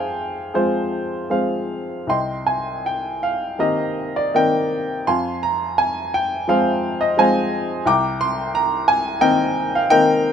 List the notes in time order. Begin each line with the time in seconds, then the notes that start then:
Already playing: F2 G#4 C5 F5 G5 G#5 C6
0.54 F3 G#3 C4 F4 G#4 C5
1.30 F3 G#3 C4 G#4 C5 F5
2.07 C2 D#5 G5 C6
2.46 G#5
2.86 G5
3.23 F5
3.59 D#3 A#3 C4 G4 A#4 D#5
4.16 D5
4.34 D#3 A#3 C4 A#4 D#5 G5
5.07 F2 F5 G#5 C6
5.43 A#5
5.78 G#5
6.14 G5
6.48 F3 G#3 C4 G#4 C5 F5
7.01 D#5
7.17 F3 G#3 C4 C5 F5 G#5
7.86 C2 G5 A#5 D6
8.21 C6
8.55 A#5
8.88 G#5
9.21 D#3 A#3 C4 A#4 D#5 G5
9.75 F5
9.90 D#3 A#3 C4 A#4 D#5 G5